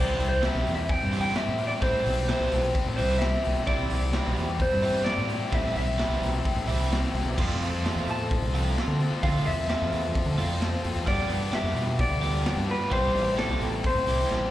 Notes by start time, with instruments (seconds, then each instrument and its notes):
Already playing: fingered electric bass C2, overdriven electric guitar E3 G3, distorted electric guitar C4 E4, clean electric guitar C5
0.00 analog synth pad G3 C4 E5, distorted electric guitar G4
0.20 fingered electric bass C2, distorted electric guitar E4 G4, open hi-hat
0.29 clean electric guitar C5
0.42 overdriven electric guitar E3 G3, distorted electric guitar C4 E4 G4, clean electric guitar E5, snare, open hi-hat
0.55 fingered electric bass B1
0.67 fingered electric bass E2, open hi-hat
0.75 clean electric guitar E5
0.89 clean electric guitar G5, kick, open hi-hat
1.03 fingered electric bass G2
1.13 overdriven electric guitar E3 G3 C4, distorted electric guitar E4 G4, open hi-hat
1.21 clean electric guitar G5
1.36 distorted electric guitar C4 E4 G4, clean electric guitar E5, snare, open hi-hat
1.48 fingered electric bass A2
1.58 distorted electric guitar E4 G4, open hi-hat
1.67 clean electric guitar D5
1.81 fingered electric bass A2, overdriven electric guitar E3 G3, distorted electric guitar C4 E4 G4, clean electric guitar C5, kick, open hi-hat
2.06 fingered electric bass B1, distorted electric guitar E4 G4, open hi-hat
2.28 overdriven electric guitar E3 G3, distorted electric guitar C4 E4 G4, clean electric guitar C5, snare, open hi-hat
2.40 fingered electric bass C2
2.52 fingered electric bass B1, open hi-hat
2.75 kick, open hi-hat
2.88 fingered electric bass A2
2.96 fingered electric bass C2, overdriven electric guitar E3 G3 C4, distorted electric guitar G4, clean electric guitar C5, open hi-hat
3.01 distorted electric guitar E4
3.18 distorted electric guitar C4, clean electric guitar E5, snare, open hi-hat
3.23 distorted electric guitar E4 G4
3.44 fingered electric bass C2, distorted electric guitar E4 G4, open hi-hat
3.59 fingered electric bass B1
3.67 fingered electric bass C2, overdriven electric guitar E3 G3, distorted electric guitar C4 E4 G4, clean electric guitar D5, kick, open hi-hat
3.90 fingered electric bass C2, distorted electric guitar E4 G4, open hi-hat
4.13 overdriven electric guitar E3 G3, distorted electric guitar C4 E4 G4, snare, open hi-hat
4.27 fingered electric bass B1
4.36 fingered electric bass E2, open hi-hat
4.60 clean electric guitar C5, kick, open hi-hat
4.73 fingered electric bass G2
4.83 overdriven electric guitar E3 G3 C4, distorted electric guitar E4 G4, open hi-hat
5.04 distorted electric guitar C4 E4, clean electric guitar D5, snare, open hi-hat
5.09 distorted electric guitar G4
5.18 fingered electric bass A2
5.29 distorted electric guitar E4 G4, open hi-hat
5.52 fingered electric bass A2, overdriven electric guitar E3 G3, distorted electric guitar C4 E4 G4, clean electric guitar E5, kick, open hi-hat
5.75 fingered electric bass B1, distorted electric guitar E4 G4, clean electric guitar E5, open hi-hat
5.98 overdriven electric guitar E3 G3, distorted electric guitar C4 E4 G4, snare, open hi-hat
6.08 fingered electric bass C2
6.21 fingered electric bass B1, open hi-hat
6.45 kick, open hi-hat
6.56 fingered electric bass A2
6.68 fingered electric bass C2, overdriven electric guitar E3 G3 C4, distorted electric guitar E4 G4, open hi-hat
6.92 distorted electric guitar C4 E4 G4, snare, open hi-hat
7.14 fingered electric bass C2, distorted electric guitar E4 G4, open hi-hat
7.25 fingered electric bass B1
7.38 fingered electric bass F2, distorted electric guitar F3 C4 F4 A4, analog synth pad A3 C4 A4, overdriven electric guitar A3, kick, crash
7.61 fingered electric bass F2, distorted electric guitar C4 F4 A4, open hi-hat
7.84 distorted electric guitar F3 C4 F4 A4, overdriven electric guitar A3, snare, open hi-hat
7.96 fingered electric bass E2
8.07 fingered electric bass A2, clean electric guitar A5, open hi-hat
8.31 kick, open hi-hat
8.42 fingered electric bass C2
8.54 overdriven electric guitar F3 A3, distorted electric guitar C4 F4 A4, open hi-hat
8.77 distorted electric guitar F3 C4 F4 A4, snare, open hi-hat
8.88 fingered electric bass D3
9.00 distorted electric guitar C4 F4 A4, open hi-hat
9.23 fingered electric bass D3, distorted electric guitar F3 C4 F4 A4, overdriven electric guitar A3, analog synth pad F4, clean electric guitar F5, kick, open hi-hat
9.45 fingered electric bass E2, distorted electric guitar C4 F4 A4, clean electric guitar E5, open hi-hat
9.68 distorted electric guitar F3 C4 F4 A4, overdriven electric guitar A3, clean electric guitar E5, snare, open hi-hat
9.82 fingered electric bass F2
9.92 fingered electric bass E2, open hi-hat
10.15 kick, open hi-hat
10.26 fingered electric bass D3
10.37 fingered electric bass F2, overdriven electric guitar F3 A3, distorted electric guitar C4 F4 A4, open hi-hat
10.60 distorted electric guitar F3 C4 F4 A4, snare, open hi-hat
10.83 fingered electric bass F2, distorted electric guitar C4 F4 A4, open hi-hat
10.96 fingered electric bass E2
11.07 fingered electric bass G2, overdriven electric guitar F3 G3, analog synth pad G3 D4 B4, distorted electric guitar B3 D4 G4, clean electric guitar D5, kick, open hi-hat
11.30 fingered electric bass G2, distorted electric guitar D4 G4, open hi-hat
11.52 overdriven electric guitar F3 G3, distorted electric guitar B3 D4 G4, clean electric guitar E5, snare, open hi-hat
11.64 fingered electric bass F2
11.75 fingered electric bass B2, open hi-hat
11.99 clean electric guitar D5, kick, open hi-hat
12.09 fingered electric bass D2
12.21 overdriven electric guitar F3 G3 B3, distorted electric guitar D4 G4, open hi-hat
12.44 distorted electric guitar B3 D4 G4, snare, open hi-hat
12.56 fingered electric bass G2
12.67 distorted electric guitar D4 G4, clean electric guitar B4, open hi-hat
12.90 fingered electric bass C2, analog synth pad C3 A3 E4, overdriven electric guitar E3, distorted electric guitar G3 C4 E4 G4, clean electric guitar C5, kick, open hi-hat
13.13 fingered electric bass A1, distorted electric guitar C4 E4 G4, open hi-hat
13.36 overdriven electric guitar E3, distorted electric guitar G3 C4 E4 G4, clean electric guitar A4, snare, open hi-hat
13.49 fingered electric bass C2
13.60 fingered electric bass A1, open hi-hat
13.84 clean electric guitar C5, kick, open hi-hat
13.95 fingered electric bass A2
14.06 fingered electric bass C2, overdriven electric guitar E3 G3, distorted electric guitar C4 E4 G4, open hi-hat
14.30 fingered electric bass A1, distorted electric guitar G3 C4 E4 G4, snare